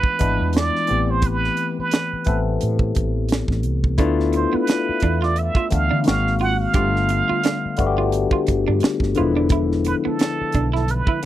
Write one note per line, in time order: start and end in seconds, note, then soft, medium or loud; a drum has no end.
0.00 0.19 E3 medium
0.00 0.19 G#3 medium
0.00 0.20 B3 medium
0.00 0.21 D4 medium
0.00 0.90 F4 medium
0.00 0.58 B4 medium
0.00 kick medium
0.19 0.37 G#1 medium
0.19 0.86 E3 medium
0.19 0.88 G#3 medium
0.19 0.88 B3 medium
0.19 0.89 D4 medium
0.19 0.89 E4 medium
0.19 kick medium
0.19 closed hi-hat medium
0.41 0.69 E2 medium
0.53 snare loud
0.53 closed hi-hat medium
0.57 1.12 D5 medium
0.76 snare soft
0.87 1.48 A1 medium
0.87 1.99 E3 medium
0.87 2.00 A3 medium
0.87 2.00 B3 medium
0.87 2.00 C4 medium
0.87 2.00 G4 medium
0.87 closed hi-hat medium
1.11 1.27 C5 medium
1.22 kick loud
1.22 closed hi-hat medium
1.26 1.78 B4 medium
1.44 snare soft
1.57 closed hi-hat medium
1.79 2.43 B4 medium
1.79 muted fretless electric bass stroke soft
1.91 snare loud
1.91 closed hi-hat medium
2.13 muted fretless electric bass stroke soft
2.25 2.57 A1 medium
2.25 3.37 E3 medium
2.25 3.37 A3 medium
2.25 3.38 B3 medium
2.25 3.38 C4 medium
2.25 3.38 A4 medium
2.25 kick medium
2.25 closed hi-hat medium
2.61 2.91 A2 medium
2.61 closed hi-hat medium
2.79 kick medium
2.95 3.42 A1 medium
2.95 kick medium
2.95 closed hi-hat medium
3.29 snare loud
3.29 closed hi-hat medium
3.48 3.66 A1 medium
3.48 kick medium
3.48 snare soft
3.63 4.00 C2 medium
3.63 closed hi-hat medium
3.84 kick medium
3.98 4.45 D2 medium
3.98 5.10 A3 loud
3.98 5.10 B3 medium
3.98 4.13 D4 medium
3.98 5.11 D4 medium
3.98 5.09 E4 loud
3.98 5.11 F4 loud
3.98 kick loud
3.98 closed hi-hat medium
4.20 snare soft
4.33 4.57 C5 medium
4.33 muted clean electric guitar stroke soft
4.33 closed hi-hat medium
4.53 4.64 B3 medium
4.53 5.22 B4 medium
4.53 muted fretless electric bass stroke soft
4.67 muted clean electric guitar stroke soft
4.67 snare medium
4.67 closed hi-hat medium
4.89 muted fretless electric bass stroke soft
5.00 5.49 E2 medium
5.00 5.17 D4 medium
5.00 kick medium
5.00 closed hi-hat medium
5.22 5.33 F4 medium
5.22 5.40 D5 medium
5.22 snare soft
5.36 5.74 E5 medium
5.36 closed hi-hat medium
5.55 5.67 F4 medium
5.55 kick medium
5.70 5.89 D2 medium
5.70 6.05 E3 medium
5.70 6.05 A3 medium
5.70 6.06 B3 medium
5.70 6.06 D4 medium
5.70 6.06 F5 medium
5.70 muted clean electric guitar stroke soft
5.70 kick medium
5.70 closed hi-hat medium
5.91 6.05 D3 medium
5.91 6.02 D4 medium
6.04 6.66 G#1 medium
6.04 6.62 D#3 medium
6.04 6.62 G#3 medium
6.04 6.62 A#3 medium
6.04 6.63 C4 medium
6.04 6.63 F#4 medium
6.04 6.43 F5 medium
6.04 snare loud
6.04 closed hi-hat medium
6.27 snare soft
6.39 6.54 F4 medium
6.39 6.62 F#5 loud
6.39 open hi-hat soft
6.61 7.98 F5 medium
6.73 7.21 G1 medium
6.73 7.58 D3 medium
6.73 7.59 G3 medium
6.73 7.59 A3 medium
6.73 7.59 B3 medium
6.73 7.60 F4 medium
6.73 6.89 G4 medium
6.73 kick loud
6.73 closed hi-hat medium
6.96 snare soft
7.09 muted clean electric guitar stroke soft
7.09 closed hi-hat medium
7.29 7.40 F4 medium
7.29 muted fretless electric bass stroke soft
7.43 7.58 D4 medium
7.43 snare medium
7.43 closed hi-hat medium
7.65 muted fretless electric bass stroke soft
7.77 8.25 G1 medium
7.77 8.89 D3 medium
7.77 8.89 G3 medium
7.77 8.90 A3 medium
7.77 8.90 B3 medium
7.77 7.86 F#4 medium
7.77 muted clean electric guitar stroke soft
7.77 kick medium
7.77 closed hi-hat medium
7.86 8.93 G4 medium
7.98 8.09 F4 medium
8.12 closed hi-hat medium
8.31 8.43 F4 medium
8.31 kick medium
8.47 8.65 G1 medium
8.47 muted clean electric guitar stroke soft
8.47 kick medium
8.47 closed hi-hat medium
8.68 8.81 G2 medium
8.68 8.78 D4 medium
8.80 muted clean electric guitar stroke soft
8.80 muted fretless electric bass stroke soft
8.80 snare loud
8.80 closed hi-hat medium
9.00 9.14 G1 medium
9.00 kick medium
9.00 snare soft
9.15 10.27 D3 medium
9.15 10.27 F3 medium
9.15 10.28 G#3 medium
9.15 10.28 B3 medium
9.15 10.28 E4 medium
9.15 9.31 F4 medium
9.15 closed hi-hat medium
9.19 9.93 E1 medium
9.37 9.47 D4 medium
9.49 9.65 E4 medium
9.49 kick loud
9.49 closed hi-hat medium
9.72 snare soft
9.85 9.96 B4 medium
9.85 muted clean electric guitar stroke soft
9.85 closed hi-hat medium
10.05 10.16 B3 medium
10.05 10.70 A4 medium
10.05 muted fretless electric bass stroke soft
10.19 muted clean electric guitar stroke soft
10.19 snare medium
10.19 closed hi-hat medium
10.41 muted fretless electric bass stroke soft
10.52 11.01 B1 medium
10.52 10.68 D4 medium
10.52 kick medium
10.52 closed hi-hat medium
10.73 10.84 E4 medium
10.73 10.93 A4 medium
10.73 snare soft
10.88 11.24 B4 medium
10.88 closed hi-hat medium
11.07 11.19 E4 medium
11.07 kick medium